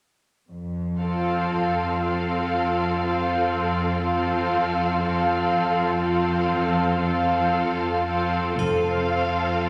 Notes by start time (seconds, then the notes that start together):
0.49 F2
1.00 C4 F4 A4 F5
1.51 F2
2.01 C4 F4 A4 F5
2.53 F2
3.01 C4 F4 A4 F5
3.53 F2
4.02 C4 F4 A4 F5
4.53 F2
5.02 C4 F4 A4 F5
5.52 F2
6.01 C4 F4 A4 F5
6.52 F2
7.02 C4 F4 A4 F5
7.54 F2
8.06 C4 F4 A4 F5
8.40 F2
8.44 C4
8.49 F4
8.54 F4 A4
8.58 F1 F2 C4 A4 C5 F5, triangle